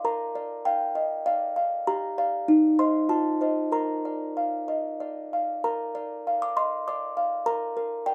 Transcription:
0.05 A#4 A#5
0.35 D5
0.65 F5 G5
0.95 D#5
1.26 D5 F5
1.56 F5
1.87 G4 A#5
2.18 D5 F5
2.48 D#4
2.79 C5 D#5 C6
3.09 F4 A5
3.41 C5 D#5
3.72 A#4 A#5
4.05 D5
4.37 F5
4.68 D#5
5.00 D5
5.33 F5
5.64 A#4 A#5
5.95 D5
6.27 F5
6.42 D6
6.57 D#5 C6
6.88 D5 D6
7.17 F5
7.46 A#4 A#5
7.77 A#4
8.06 D5 G5

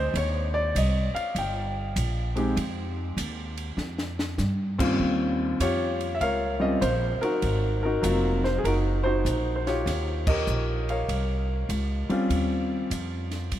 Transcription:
Already playing: D2 C5
0.14 D#2 C#5, kick, ride
0.54 D5
0.75 C2 D#5, kick, hi-hat pedal, ride
1.14 F5, muted upright bass stroke, ride
1.35 G1 G5, kick, ride
1.96 A#1, kick, hi-hat pedal, ride
2.36 G#3 C4 D#4 G4, ride
2.57 F2, kick, ride
3.17 D#2, kick, hi-hat pedal, ride
3.57 ride
3.77 F2, snare
3.98 snare
4.19 snare
4.38 G2, snare, hi-hat pedal
4.78 D#2 G3 C4 C#4 F4, kick, crash
5.00 D#2, kick
5.60 F2 F4 G4 C#5, kick, hi-hat pedal, ride
6.01 ride
6.15 E5
6.21 C#2 A#4 C#5 F5, kick, ride
6.60 G3 C4 C#4 F4 D#5
6.81 A#1 C5, kick, hi-hat pedal, ride
7.20 D#4 F#4 A#4, muted upright bass stroke, ride
7.42 G#1, kick, ride
7.83 D#4 F#4 A#4
8.02 F1 F#3 A#3 C4 F4, kick, hi-hat pedal, ride
8.44 C5, snare
8.58 G#4
8.64 F#1 D#4 F#4 A#4, kick, ride
9.04 D#4 F#4 C5
9.25 A#1, kick, hi-hat pedal, ride
9.56 C5
9.67 F4 G4 C#5, snare, ride
9.86 D#2, kick, snare, ride
10.27 G4 A#4 D#5, kick, crash
10.47 A#1, hi-hat pedal
10.89 A#4 C#5 F5, ride
11.08 C2, kick, ride
11.69 C#2, kick, hi-hat pedal, ride
12.09 G3 C4 C#4 F4, muted upright bass stroke, ride
12.30 D#2, kick, ride
12.90 F2, kick, hi-hat pedal, ride
13.31 snare, ride
13.52 G2, kick, ride

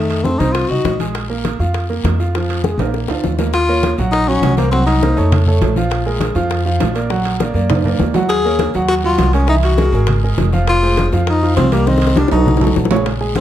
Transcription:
Already playing: F2 D#3 A3 D#4
0.10 high bongo, high conga, high timbale
0.24 A3 C4 A4, high bongo, high conga, short guiro
0.39 C2 C4 D#4 C5, high bongo, high conga, high timbale, short guiro
0.53 F4, high bongo, high conga, high timbale, long guiro
0.68 C2 D#4 F#4 D#5, high conga
0.84 A#1, high bongo, low bongo, high conga, high timbale, low timbale, short guiro
0.99 G#3 G#4, high bongo, high conga, high timbale, short guiro
1.15 high bongo, high conga, high timbale, long guiro
1.29 A#3 A#4, high conga
1.45 high bongo, high conga, high timbale, short guiro
1.59 F2 F4 F5, high bongo, high conga, short guiro
1.74 high bongo, high conga, high timbale, long guiro
1.90 A#3 A#4, high bongo, high conga
2.04 F2, high bongo, low bongo, high conga, high timbale, low timbale, short guiro
2.20 F4 F5, high bongo, high conga, short guiro
2.35 F3 F4, high bongo, high conga, high timbale, long guiro
2.49 high bongo, high conga, high timbale
2.64 G#3 G#4, high bongo, high conga, short guiro
2.78 A#1 A#3 A#4, high bongo, high conga, high timbale, short guiro
2.94 high bongo, high conga, long guiro
3.08 D2 F4 F5, high bongo, high conga, high timbale
3.24 D#2, low bongo, high conga, low timbale, short guiro
3.39 A#3 A#4, low bongo, high conga, low timbale, short guiro
3.54 F4, high bongo, high conga, high timbale, long guiro
3.69 A#3 A#4 C#5, high bongo, high conga
3.83 high bongo, high conga, high timbale, low timbale, short guiro
3.98 A#1 F#3 F#4 F#5, high bongo, high conga, short guiro
4.12 D#4, high bongo, high conga, high timbale, long guiro
4.27 F#3 C#4 F#4 F#5, high conga
4.42 C2, high bongo, low bongo, high conga, high timbale, low timbale, short guiro
4.57 A#3 A#4 C5, high bongo, high conga, high timbale, short guiro
4.72 F#3 C4 F#4 F#5, high bongo, high conga, long guiro
4.87 D#4, high bongo, high conga, high timbale
5.02 A#3 A#4 C5, high bongo, high conga, high timbale, low timbale, short guiro
5.16 F2 A3 A4 C#5, high bongo, high conga, short guiro
5.32 high bongo, high conga, low conga, high timbale, long guiro
5.47 A3 A4 C#5, high conga, low conga
5.61 A#1, high bongo, low bongo, high conga, high timbale, low timbale, short guiro
5.76 F3 F4 F5, high bongo, high conga, short guiro
5.90 high bongo, high conga, high timbale, long guiro
6.06 G#3 G#4 A#4, high bongo, high conga
6.20 high bongo, high conga, high timbale, low timbale, short guiro
6.35 F2 F3 F4 F5, high bongo, high conga, short guiro
6.50 high bongo, high conga, high timbale, long guiro
6.66 F3 F4 F5, high conga
6.80 A#1, high bongo, low bongo, high conga, high timbale, low timbale, short guiro
6.95 A#3 A#4 D5, high bongo, high timbale, short guiro
7.10 F#3 F#4 F#5, high bongo, high conga, long guiro
7.25 high bongo, high conga, high timbale
7.40 A#3 A#4 D5, high bongo, high conga, high timbale, low timbale, short guiro
7.54 F#2 A#3 A#4 D5, high bongo, high conga, short guiro
7.70 high bongo, high conga, low conga, high timbale, long guiro
7.85 A#3 A#4 D5, high conga, low conga, high timbale
7.99 D#2, high bongo, low bongo, high conga, low timbale, short guiro
8.14 F#3 F#4 F#5, high bongo, high conga, low timbale, short guiro
8.29 G#4, high bongo, high conga, high timbale, long guiro
8.44 A#3 A#4 C#5, high bongo, high conga
8.59 high bongo, high conga, high timbale, low timbale
8.74 D#2 F#3 F#4 F#5, high bongo, high conga, short guiro
8.88 F#4, high bongo, high conga, high timbale, long guiro
9.03 F#3 F4 F#4 F#5, high conga
9.18 C2, high bongo, low bongo, high conga, high timbale, low timbale, short guiro
9.33 G#3 C#4 G#4 A#4, high bongo, high timbale, short guiro
9.48 E3 D#4 E4 E5, high bongo, high conga, long guiro
9.63 F#4, high bongo, high conga, high timbale
9.77 G#3 G#4 A#4, high bongo, high conga, high timbale, low timbale, short guiro
9.92 G#1 G#3 G#4 A#4, high bongo, high conga, short guiro
10.07 high bongo, high conga, low conga, high timbale, long guiro
10.23 G#3 G#4 A#4, high conga
10.37 F1, high bongo, low bongo, high conga, high timbale, low timbale, short guiro
10.53 F3 F4 F5, high bongo, high conga, short guiro
10.67 F4, high bongo, high conga, high timbale, long guiro
10.83 G#3 G#4 C5, high bongo, high conga
10.97 high bongo, high conga, high timbale, low timbale, short guiro
11.12 F2 F3 F4 F5, high bongo, high conga, short guiro
11.27 D#4, high bongo, high conga, high timbale, long guiro
11.43 F3 F4 F5, high conga
11.56 C2 C4, high bongo, low bongo, high conga, high timbale, low timbale, short guiro
11.72 G3 A#3 G4 A#4, high bongo, high conga, high timbale, short guiro
11.87 D#3 C4 D#4 D#5, high bongo, long guiro
11.98 high bongo
12.02 high conga, high timbale
12.07 high bongo
12.16 G3 D4 G4 A#4, low bongo, high conga, high timbale, low timbale, short guiro
12.28 B1 F#3 D#4 F#4, low bongo, high conga, high timbale, short guiro
12.32 A4
12.46 low bongo, high conga, low conga, high timbale, long guiro
12.57 F#3, low bongo
12.61 F#4 A4, high conga, low conga, low timbale
12.67 low bongo
12.76 A#1, low bongo, high conga, short guiro
12.85 low bongo
12.91 C#3 C#4 C#5, high conga, low timbale, short guiro
12.96 low bongo
13.06 high bongo, high conga, high timbale, long guiro
13.21 G#3 G#4 G#5, high bongo, high conga
13.35 high bongo, high conga, high timbale, low timbale, short guiro

